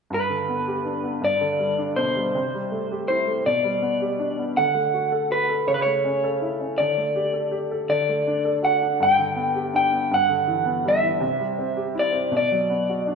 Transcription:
0.10 G2 B4
0.30 D3
0.49 B3
0.68 G4
0.85 D4
1.04 B3
1.22 G2 D5
1.41 D3
1.59 G3
1.78 D4
1.96 B2 C5
2.16 G3
2.35 C3
2.54 G3
2.72 A3
2.92 G4
3.08 E4 C5
3.28 A3
3.46 B2 D5
3.64 G3
3.82 B3
4.01 G4
4.19 D4
4.38 B3
4.57 D3 F#5
4.75 A3
4.94 F#4
5.12 A4
5.30 F#4 B4
5.49 A4
5.67 C#3 C#5
5.74 B4
5.82 A3 C#5
6.05 C#4
6.24 A4
6.42 E4
6.61 C#4
6.78 D3 D5
6.98 A3
7.16 G4
7.33 A4
7.51 G4
7.71 A4
7.89 D3 D5
8.09 A3
8.27 D4
8.45 A4
8.63 F#4 F#5
8.82 D4
9.00 G2 G5
9.19 D3
9.36 B3
9.55 G4
9.74 D4 G5
9.92 B3
10.11 G2 F#5
10.29 D3
10.48 E3
10.66 B3
10.85 G3 E5
11.03 E3
11.20 C3
11.40 G3
11.59 C4
11.77 G4
11.95 E4
11.99 D5
12.13 C4
12.32 B2
12.37 D5
12.51 F#3
12.70 B3
12.90 F#4
13.07 D4

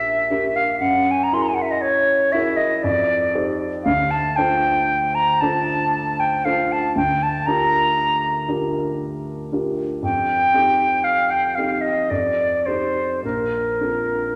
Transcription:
Already playing: D4 G4 A#4 E5
0.30 D4 G4 A#4
0.56 F5
0.80 F#2 F#5
1.11 G#5
1.24 A#5
1.33 E4 F#4 G#4 A#4 C6
1.43 A#5
1.49 G#5
1.54 F#5
1.62 E5
1.71 D#5
1.81 C#5
2.32 E4 F#4 G#4 A#4 E5
2.57 D#5
2.83 F2 D5
3.34 D#4 G4 A4 C5
3.84 D2 F5
4.11 A5
4.36 D4 F4 A4 C5 G5
5.15 A#5
5.41 D4 F4 A4 C5 A5
6.20 G5
6.45 D4 F4 A4 C5 F5
6.72 A5
6.96 D2 G5
7.23 A5
7.46 D4 F4 G4 A#4 A#5
8.48 D4 F4 G4 A#4
9.52 D4 F4 G4 A#4
10.02 F2 G5
10.54 C4 D#4 G4 A4
11.04 F5
11.30 G5
11.55 C4 D#4 G4 A4 F5
11.81 D#5
12.10 F2 D5
12.66 C4 D#4 G4 A4 C5
13.23 A#1 A#4
13.81 C4 D4 F4 A4

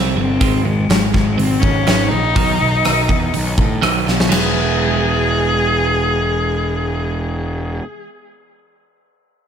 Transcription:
Already playing: C2 C3 G3 C4
0.16 G1 C3 G3 C4
0.40 G#1 G#2 D#3 G#3, kick, open hi-hat
0.65 G#2 D#3 G#3
0.89 G#1 G#2 D#3, snare, open hi-hat
1.12 G#1 G#2 D#3 G#3, kick, snare
1.35 G#1 G#2 D#3 C4, open hi-hat
1.60 G#1 G#2 D#3 C#4, kick
1.87 G#1 G#2 D#3 G#3, snare, open hi-hat
2.08 A#1 G#2 D#3 D#4
2.36 B1 B2 D#3 F#3, kick, open hi-hat
2.61 B1 B2 D#3
2.85 B1 B2 D#3, cross-stick, open hi-hat
3.09 E2 B2 D#3, kick
3.34 B1 B2 D#3, open hi-hat
3.58 A2 B2 D#3, kick
3.82 B1 B2 D#3 F#3, cross-stick, open hi-hat
4.06 B1 B2 D#3, snare
4.20 snare
4.29 E1 E3 G#3 B3 G#4, snare, crash
4.33 E4

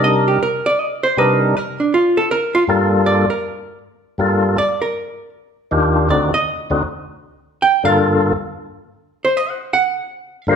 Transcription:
Already playing: C3 G3 D4 D#4 A#4
0.04 D#5
0.28 G4
0.43 A#4
0.66 D5
0.80 D#5
1.03 C5
1.17 C3 G3 D4 D#4 A#4 B4
1.42 A4
1.57 A#4
1.80 D4
1.94 F4
2.17 A4
2.31 A#4
2.55 F4
2.68 G2 G3 A#3 F4 A4
3.06 D5
3.30 A#4
4.18 G2 G3 A#3 F4 A4
4.58 D5
4.82 A#4
5.71 D#2 D#3 D4 F4 G4
6.09 D2 D3 C4 D#4 F#4 D5
6.34 D#5
6.70 D2 D3 C4 D#4 F#4
7.62 G5
7.83 G2 D3 A#3 F4 A4 F5
9.25 C5
9.37 D#5
9.50 F#5
9.73 F#5
10.47 G2 D3 A#3 F4 A#4 C5
10.52 G4

